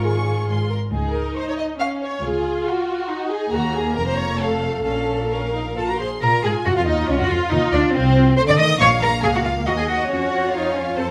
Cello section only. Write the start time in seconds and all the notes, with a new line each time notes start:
Already playing: G#2
0.48 G#2
0.93 C#2
2.23 C#2
3.52 D#2
3.96 F2
4.85 A#2
5.77 A4
5.89 A#4
6.00 C5
6.22 A#4
6.43 G#4
6.66 F#4
6.77 F4
6.87 D#4
7.09 C#4
7.21 F#4
7.30 F4
7.52 D#4
7.74 D4
7.94 C4
8.37 C5
8.49 D5
8.59 D#5
8.81 C#5
9.02 A#4
9.23 G#4
9.35 F#4
9.45 F4
9.67 F#4
9.79 G#4
9.89 F#4
10.10 F#4
10.54 F4
10.98 A4